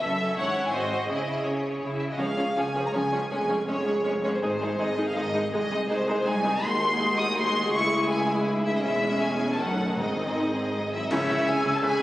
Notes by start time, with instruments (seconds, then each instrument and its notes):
Already playing: viola section E5
0.01 double bass section F#1, cello section F#2, violin section C#4 A4 E5
0.19 violin section C#4 A4
0.36 double bass section G#1, cello section G#2, violin section C#4 E4 F#5, viola section C#5
0.54 violin section C#4 E4
0.65 violin section G#5
0.72 double bass section G#1, cello section G#2, violin section C4 F#4 D#5, viola section C5
0.91 violin section C4 F#4
1.09 double bass section C#2, cello section C#3, violin section C#4 E4 D#5, viola section G#4
1.27 violin section C#4 E4
1.45 cello section C#3, violin section C#4 C#5
1.81 cello section C#3, violin section E4
1.99 violin section E5
2.09 violin section F#4 D#5
2.17 cello section C#2, double bass section C#2, viola section F3 C#4, french horn section G#3 G#4, violin section G#4 C#5 F5
2.37 viola section F3 C#4, violin section G#4 C#5
2.56 cello section C#2, double bass section C#2, viola section F3 C#4, violin section G#4 C#5 G#5
2.75 viola section F3 C#4, violin section G#4 C#5
2.86 violin section A#5
2.92 cello section C#2, double bass section C#2, viola section F3 C#4, french horn section G#3 G#4, violin section G#4 C#5 G#5
3.11 viola section F3 C#4, violin section G#4 C#5
3.30 double bass section F1, cello section F2, french horn section G#3 G#4, viola section G#3 C#4, violin section G#4 C#5 G#5
3.49 viola section G#3 C#4, violin section G#4 C#5
3.68 double bass section F1, cello section F2, viola section G#3 C#4, french horn section G#3 G#4, violin section G#4 C#5
3.86 viola section G#3 C#4, violin section G#4 C#5
4.04 double bass section F1, cello section F2, viola section G#3 C#4, violin section G#4 C#5
4.23 viola section G#3 C#4, violin section G#4 C#5
4.34 violin section C5
4.42 double bass section G#1, cello section G#2, french horn section G#3 G#4, viola section G#3 D#4, violin section G#4 C5
4.60 viola section G#3 D#4, violin section G#4
4.79 double bass section G#1, cello section G#2, french horn section G#3 G#4, viola section G#3 D#4, violin section G#4 D#5
4.97 viola section G#3 D#4, violin section G#4
5.07 violin section F5
5.15 double bass section G#1, cello section G#2, french horn section G#3 G#4, viola section G#3 D#4, violin section G#4 D#5
5.33 viola section G#3 D#4, violin section G#4
5.52 cello section C2, double bass section C2, french horn section G#3 G#4, viola section G#3 D#4, violin section G#4 D#5
5.70 viola section G#3 D#4, violin section G#4
5.89 double bass section C2, cello section C2, viola section G#3 D#4, french horn section G#3, violin section G#4 C5
6.07 viola section G#3 D#4, violin section G#4
6.24 cello section C2, double bass section C2, french horn section G#3 G#4, viola section G#3 D#4, violin section G#4 G#5
6.44 viola section G#3 D#4, violin section G#4
6.61 cello section D#2, double bass section D#2, french horn section G#3 F#4, viola section G#3 D#4, violin section F#4 G#4 C6
7.19 violin section D#6
7.36 french horn section G#3 F#4, violin section C6
7.72 cello section C#2, double bass section C#2, french horn section G#3 E4, viola section E4, violin section E4 C#6
8.08 french horn section G#3, violin section G#5
8.47 french horn section D#4
8.65 violin section E5
8.75 violin section D#5
8.82 double bass section E1, cello section E2, viola section G#3 C#4, french horn section G#3 C#4, violin section G#4 E5
9.21 french horn section G#3 C#4, violin section G#5
9.52 violin section A5
9.58 double bass section F#1, cello section F#2, viola section D#3, french horn section A3 C#4, violin section D#4 A4 F#5
9.97 double bass section G#1, timpani G#2, cello section G#2, french horn section G#3 C4, viola section C4, violin section G#4 D#5
10.37 french horn section D#4
10.54 french horn section C4
10.73 french horn section G#3
10.92 french horn section F#3, violin section E4 E5
11.03 violin section D#4 D#5
11.11 double bass section C#2, cello section C#3, timpani C#3, french horn section G#3 C#4, viola section C#4 E4, violin section E4 E5, clarinet G#4, oboe C#5, flute section E6, concert bass drum, crash
11.29 double bass section C#2, cello section C#3, viola section C#4 E4
11.47 double bass section C#2, cello section C#3, viola section C#4 E4, violin section G#4 G#5
11.64 double bass section C#2, cello section C#3, viola section C#4 E4
11.73 violin section A4 A5
11.82 double bass section C#2, cello section C#3, viola section C#4 E4, violin section G#4 G#5, oboe B4